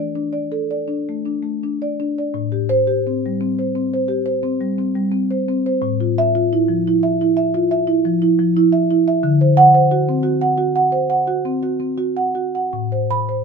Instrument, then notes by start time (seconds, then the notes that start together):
marimba
Already playing: E3 D4 D5
0.15 D4
0.33 D5
0.52 A4
0.71 D5
0.88 D4
1.09 A3
1.26 D4
1.43 A3
1.63 D4
1.82 D5
2.00 D4
2.18 D5
2.34 A2
2.52 G4
2.69 C5
2.87 G4
3.07 C4
3.26 G3
3.41 C4
3.59 C5
3.75 C4
3.94 C5
4.08 G4
4.26 C5
4.43 C4
4.61 G3
4.79 C4
4.95 G3
5.12 C4
5.31 C5
5.48 C4
5.66 C5
5.82 A2
6.00 F4
6.18 E5
6.35 F4
6.53 E4
6.68 F3
6.88 E4
7.03 E5
7.21 E4
7.37 E5
7.54 F4
7.71 E5
7.87 E4
8.05 F3
8.22 E4
8.39 F3
8.57 E4
8.72 E5
8.91 E4
9.08 E5
9.23 D3
9.41 C5
9.57 F#5
9.74 C5
9.91 F#4
10.09 C4
10.23 F#4
10.41 F#5
10.58 F#4
10.76 F#5
10.92 C5
11.10 F#5
11.27 F#4
11.45 C4
11.63 F#4
11.80 C4
11.98 F#4
12.17 F#5
12.35 F#4
12.55 F#5
12.73 A2
12.92 C5
13.11 B5
13.29 C5